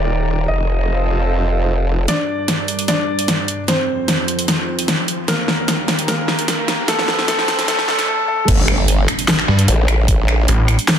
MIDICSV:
0, 0, Header, 1, 8, 480
1, 0, Start_track
1, 0, Key_signature, -2, "minor"
1, 0, Tempo, 400000
1, 578, Time_signature, 4, 2, 24, 8
1, 13186, End_track
2, 0, Start_track
2, 0, Title_t, "Grand piano"
2, 0, Program_c, 0, 0
2, 0, Note_on_c, 0, 74, 89
2, 487, Note_off_c, 0, 74, 0
2, 578, Note_on_c, 0, 75, 88
2, 2407, Note_off_c, 0, 75, 0
2, 2498, Note_on_c, 0, 62, 72
2, 2499, Note_on_c, 0, 74, 91
2, 3367, Note_off_c, 0, 62, 0
2, 3367, Note_off_c, 0, 74, 0
2, 3458, Note_on_c, 0, 62, 76
2, 3458, Note_on_c, 0, 74, 90
2, 4327, Note_off_c, 0, 62, 0
2, 4327, Note_off_c, 0, 74, 0
2, 4418, Note_on_c, 0, 60, 74
2, 4418, Note_on_c, 0, 72, 89
2, 6247, Note_off_c, 0, 60, 0
2, 6247, Note_off_c, 0, 72, 0
2, 6338, Note_on_c, 0, 58, 70
2, 6338, Note_on_c, 0, 70, 91
2, 7207, Note_off_c, 0, 58, 0
2, 7207, Note_off_c, 0, 70, 0
2, 7298, Note_on_c, 0, 58, 72
2, 7298, Note_on_c, 0, 70, 90
2, 8167, Note_off_c, 0, 58, 0
2, 8167, Note_off_c, 0, 70, 0
2, 8258, Note_on_c, 0, 57, 75
2, 8258, Note_on_c, 0, 69, 98
2, 8719, Note_off_c, 0, 69, 0
2, 8720, Note_off_c, 0, 57, 0
2, 8737, Note_on_c, 0, 69, 101
2, 8738, Note_on_c, 0, 57, 77
2, 9199, Note_off_c, 0, 57, 0
2, 9199, Note_off_c, 0, 69, 0
2, 9217, Note_on_c, 0, 57, 78
2, 9217, Note_on_c, 0, 69, 101
2, 9438, Note_off_c, 0, 57, 0
2, 9439, Note_off_c, 0, 69, 0
2, 9456, Note_on_c, 0, 57, 77
2, 9457, Note_on_c, 0, 69, 100
2, 9678, Note_off_c, 0, 57, 0
2, 9678, Note_off_c, 0, 69, 0
2, 9696, Note_on_c, 0, 57, 80
2, 9696, Note_on_c, 0, 69, 103
2, 9919, Note_off_c, 0, 57, 0
2, 9919, Note_off_c, 0, 69, 0
2, 9937, Note_on_c, 0, 57, 79
2, 9937, Note_on_c, 0, 69, 102
2, 10159, Note_off_c, 0, 57, 0
2, 10159, Note_off_c, 0, 69, 0
2, 13186, End_track
3, 0, Start_track
3, 0, Title_t, "Analog synth pad"
3, 0, Program_c, 1, 89
3, 0, Note_on_c, 1, 51, 78
3, 0, Note_on_c, 1, 63, 73
3, 0, Note_on_c, 1, 67, 70
3, 0, Note_on_c, 1, 70, 71
3, 0, Note_on_c, 1, 82, 86
3, 559, Note_off_c, 1, 51, 0
3, 559, Note_off_c, 1, 63, 0
3, 559, Note_off_c, 1, 67, 0
3, 559, Note_off_c, 1, 70, 0
3, 559, Note_off_c, 1, 82, 0
3, 579, Note_on_c, 1, 60, 77
3, 579, Note_on_c, 1, 65, 72
3, 579, Note_on_c, 1, 69, 85
3, 2479, Note_off_c, 1, 60, 0
3, 2479, Note_off_c, 1, 65, 0
3, 2479, Note_off_c, 1, 69, 0
3, 2499, Note_on_c, 1, 43, 78
3, 2499, Note_on_c, 1, 55, 74
3, 2499, Note_on_c, 1, 62, 73
3, 2499, Note_on_c, 1, 70, 74
3, 2499, Note_on_c, 1, 74, 84
3, 4399, Note_off_c, 1, 55, 0
3, 4399, Note_off_c, 1, 62, 0
3, 4399, Note_off_c, 1, 70, 0
3, 4400, Note_off_c, 1, 43, 0
3, 4400, Note_off_c, 1, 74, 0
3, 4418, Note_on_c, 1, 41, 81
3, 4418, Note_on_c, 1, 53, 74
3, 4418, Note_on_c, 1, 60, 73
3, 4418, Note_on_c, 1, 69, 74
3, 4418, Note_on_c, 1, 72, 90
3, 6319, Note_off_c, 1, 41, 0
3, 6319, Note_off_c, 1, 53, 0
3, 6319, Note_off_c, 1, 60, 0
3, 6319, Note_off_c, 1, 69, 0
3, 6319, Note_off_c, 1, 72, 0
3, 6339, Note_on_c, 1, 39, 83
3, 6339, Note_on_c, 1, 51, 72
3, 6339, Note_on_c, 1, 58, 71
3, 6339, Note_on_c, 1, 67, 75
3, 6339, Note_on_c, 1, 70, 89
3, 8239, Note_off_c, 1, 39, 0
3, 8239, Note_off_c, 1, 51, 0
3, 8239, Note_off_c, 1, 58, 0
3, 8239, Note_off_c, 1, 67, 0
3, 8239, Note_off_c, 1, 70, 0
3, 8257, Note_on_c, 1, 53, 74
3, 8257, Note_on_c, 1, 60, 75
3, 8257, Note_on_c, 1, 69, 73
3, 8257, Note_on_c, 1, 72, 87
3, 8258, Note_on_c, 1, 41, 78
3, 9683, Note_off_c, 1, 53, 0
3, 9683, Note_off_c, 1, 60, 0
3, 9683, Note_off_c, 1, 69, 0
3, 9683, Note_off_c, 1, 72, 0
3, 9684, Note_off_c, 1, 41, 0
3, 10178, Note_on_c, 1, 55, 82
3, 10178, Note_on_c, 1, 58, 74
3, 10178, Note_on_c, 1, 62, 89
3, 13186, Note_off_c, 1, 55, 0
3, 13186, Note_off_c, 1, 58, 0
3, 13186, Note_off_c, 1, 62, 0
3, 13186, End_track
4, 0, Start_track
4, 0, Title_t, "Detuned saw bass"
4, 0, Program_c, 2, 39
4, 11378, Note_on_c, 2, 43, 98
4, 11600, Note_off_c, 2, 43, 0
4, 12578, Note_on_c, 2, 33, 98
4, 12924, Note_off_c, 2, 33, 0
4, 13186, End_track
5, 0, Start_track
5, 0, Title_t, "Wobble bass"
5, 0, Program_c, 3, 39
5, 0, Note_on_c, 3, 27, 87
5, 555, Note_off_c, 3, 27, 0
5, 578, Note_on_c, 3, 29, 86
5, 2475, Note_off_c, 3, 29, 0
5, 10178, Note_on_c, 3, 31, 99
5, 10880, Note_off_c, 3, 31, 0
5, 11618, Note_on_c, 3, 33, 99
5, 12560, Note_off_c, 3, 33, 0
5, 13186, End_track
6, 0, Start_track
6, 0, Title_t, "Impact"
6, 0, Program_c, 4, 103
6, 10178, Note_on_c, 4, 60, 73
6, 12098, Note_off_c, 4, 60, 0
6, 13186, End_track
7, 0, Start_track
7, 0, Title_t, "Riser"
7, 0, Program_c, 5, 103
7, 2498, Note_on_c, 5, 60, 78
7, 9698, Note_off_c, 5, 60, 0
7, 13186, End_track
8, 0, Start_track
8, 0, Title_t, "Drums"
8, 2498, Note_on_c, 9, 38, 46
8, 2498, Note_on_c, 9, 42, 78
8, 2618, Note_off_c, 9, 38, 0
8, 2618, Note_off_c, 9, 42, 0
8, 2978, Note_on_c, 9, 38, 48
8, 2978, Note_on_c, 9, 42, 78
8, 3098, Note_off_c, 9, 38, 0
8, 3098, Note_off_c, 9, 42, 0
8, 3218, Note_on_c, 9, 42, 51
8, 3338, Note_off_c, 9, 42, 0
8, 3344, Note_on_c, 9, 42, 54
8, 3458, Note_off_c, 9, 42, 0
8, 3458, Note_on_c, 9, 38, 50
8, 3458, Note_on_c, 9, 42, 81
8, 3578, Note_off_c, 9, 38, 0
8, 3578, Note_off_c, 9, 42, 0
8, 3824, Note_on_c, 9, 42, 55
8, 3938, Note_off_c, 9, 42, 0
8, 3938, Note_on_c, 9, 38, 55
8, 3938, Note_on_c, 9, 42, 81
8, 4058, Note_off_c, 9, 38, 0
8, 4058, Note_off_c, 9, 42, 0
8, 4178, Note_on_c, 9, 42, 52
8, 4298, Note_off_c, 9, 42, 0
8, 4418, Note_on_c, 9, 38, 58
8, 4418, Note_on_c, 9, 42, 77
8, 4538, Note_off_c, 9, 38, 0
8, 4538, Note_off_c, 9, 42, 0
8, 4898, Note_on_c, 9, 38, 61
8, 4898, Note_on_c, 9, 42, 77
8, 5018, Note_off_c, 9, 38, 0
8, 5018, Note_off_c, 9, 42, 0
8, 5138, Note_on_c, 9, 42, 52
8, 5258, Note_off_c, 9, 42, 0
8, 5264, Note_on_c, 9, 42, 53
8, 5378, Note_off_c, 9, 42, 0
8, 5378, Note_on_c, 9, 38, 66
8, 5378, Note_on_c, 9, 42, 78
8, 5498, Note_off_c, 9, 38, 0
8, 5498, Note_off_c, 9, 42, 0
8, 5744, Note_on_c, 9, 42, 54
8, 5858, Note_off_c, 9, 42, 0
8, 5858, Note_on_c, 9, 38, 70
8, 5858, Note_on_c, 9, 42, 79
8, 5978, Note_off_c, 9, 38, 0
8, 5978, Note_off_c, 9, 42, 0
8, 6098, Note_on_c, 9, 42, 52
8, 6218, Note_off_c, 9, 42, 0
8, 6338, Note_on_c, 9, 38, 72
8, 6338, Note_on_c, 9, 42, 74
8, 6458, Note_off_c, 9, 38, 0
8, 6458, Note_off_c, 9, 42, 0
8, 6578, Note_on_c, 9, 38, 74
8, 6698, Note_off_c, 9, 38, 0
8, 6818, Note_on_c, 9, 38, 77
8, 6818, Note_on_c, 9, 42, 77
8, 6938, Note_off_c, 9, 38, 0
8, 6938, Note_off_c, 9, 42, 0
8, 7058, Note_on_c, 9, 38, 77
8, 7058, Note_on_c, 9, 42, 49
8, 7178, Note_off_c, 9, 38, 0
8, 7178, Note_off_c, 9, 42, 0
8, 7184, Note_on_c, 9, 42, 51
8, 7298, Note_off_c, 9, 42, 0
8, 7298, Note_on_c, 9, 38, 80
8, 7298, Note_on_c, 9, 42, 76
8, 7418, Note_off_c, 9, 38, 0
8, 7418, Note_off_c, 9, 42, 0
8, 7538, Note_on_c, 9, 38, 85
8, 7658, Note_off_c, 9, 38, 0
8, 7664, Note_on_c, 9, 42, 51
8, 7778, Note_off_c, 9, 42, 0
8, 7778, Note_on_c, 9, 38, 88
8, 7778, Note_on_c, 9, 42, 78
8, 7898, Note_off_c, 9, 38, 0
8, 7898, Note_off_c, 9, 42, 0
8, 8018, Note_on_c, 9, 38, 87
8, 8018, Note_on_c, 9, 42, 51
8, 8138, Note_off_c, 9, 38, 0
8, 8138, Note_off_c, 9, 42, 0
8, 8258, Note_on_c, 9, 38, 90
8, 8258, Note_on_c, 9, 42, 78
8, 8378, Note_off_c, 9, 38, 0
8, 8378, Note_off_c, 9, 42, 0
8, 8384, Note_on_c, 9, 38, 82
8, 8497, Note_off_c, 9, 38, 0
8, 8497, Note_on_c, 9, 38, 90
8, 8617, Note_off_c, 9, 38, 0
8, 8624, Note_on_c, 9, 38, 86
8, 8738, Note_off_c, 9, 38, 0
8, 8738, Note_on_c, 9, 38, 96
8, 8738, Note_on_c, 9, 42, 76
8, 8858, Note_off_c, 9, 38, 0
8, 8858, Note_off_c, 9, 42, 0
8, 8864, Note_on_c, 9, 38, 86
8, 8978, Note_off_c, 9, 38, 0
8, 8978, Note_on_c, 9, 38, 99
8, 8978, Note_on_c, 9, 42, 51
8, 9098, Note_off_c, 9, 38, 0
8, 9098, Note_off_c, 9, 42, 0
8, 9104, Note_on_c, 9, 38, 89
8, 9104, Note_on_c, 9, 42, 52
8, 9218, Note_off_c, 9, 38, 0
8, 9218, Note_off_c, 9, 42, 0
8, 9218, Note_on_c, 9, 38, 105
8, 9218, Note_on_c, 9, 42, 77
8, 9338, Note_off_c, 9, 38, 0
8, 9338, Note_off_c, 9, 42, 0
8, 9344, Note_on_c, 9, 38, 92
8, 9458, Note_off_c, 9, 38, 0
8, 9458, Note_on_c, 9, 38, 107
8, 9578, Note_off_c, 9, 38, 0
8, 9584, Note_on_c, 9, 38, 94
8, 9584, Note_on_c, 9, 42, 50
8, 9704, Note_off_c, 9, 38, 0
8, 9704, Note_off_c, 9, 42, 0
8, 10178, Note_on_c, 9, 36, 120
8, 10178, Note_on_c, 9, 42, 83
8, 10178, Note_on_c, 9, 49, 105
8, 10298, Note_off_c, 9, 36, 0
8, 10298, Note_off_c, 9, 42, 0
8, 10298, Note_off_c, 9, 49, 0
8, 10418, Note_on_c, 9, 26, 53
8, 10538, Note_off_c, 9, 26, 0
8, 10658, Note_on_c, 9, 42, 82
8, 10778, Note_off_c, 9, 42, 0
8, 10898, Note_on_c, 9, 26, 52
8, 10898, Note_on_c, 9, 42, 55
8, 11018, Note_off_c, 9, 26, 0
8, 11018, Note_off_c, 9, 42, 0
8, 11024, Note_on_c, 9, 42, 56
8, 11138, Note_off_c, 9, 42, 0
8, 11138, Note_on_c, 9, 38, 122
8, 11138, Note_on_c, 9, 39, 95
8, 11138, Note_on_c, 9, 42, 86
8, 11258, Note_off_c, 9, 38, 0
8, 11258, Note_off_c, 9, 39, 0
8, 11258, Note_off_c, 9, 42, 0
8, 11264, Note_on_c, 9, 26, 53
8, 11384, Note_off_c, 9, 26, 0
8, 11504, Note_on_c, 9, 42, 57
8, 11618, Note_off_c, 9, 42, 0
8, 11618, Note_on_c, 9, 42, 84
8, 11738, Note_off_c, 9, 42, 0
8, 11858, Note_on_c, 9, 26, 54
8, 11858, Note_on_c, 9, 42, 53
8, 11978, Note_off_c, 9, 26, 0
8, 11978, Note_off_c, 9, 42, 0
8, 12098, Note_on_c, 9, 36, 127
8, 12098, Note_on_c, 9, 42, 83
8, 12218, Note_off_c, 9, 36, 0
8, 12218, Note_off_c, 9, 42, 0
8, 12338, Note_on_c, 9, 26, 53
8, 12458, Note_off_c, 9, 26, 0
8, 12578, Note_on_c, 9, 42, 79
8, 12698, Note_off_c, 9, 42, 0
8, 12818, Note_on_c, 9, 26, 51
8, 12818, Note_on_c, 9, 42, 54
8, 12938, Note_off_c, 9, 26, 0
8, 12938, Note_off_c, 9, 42, 0
8, 12945, Note_on_c, 9, 42, 53
8, 13059, Note_off_c, 9, 42, 0
8, 13059, Note_on_c, 9, 38, 125
8, 13059, Note_on_c, 9, 39, 99
8, 13059, Note_on_c, 9, 42, 84
8, 13179, Note_off_c, 9, 38, 0
8, 13179, Note_off_c, 9, 39, 0
8, 13179, Note_off_c, 9, 42, 0
8, 13186, End_track
0, 0, End_of_file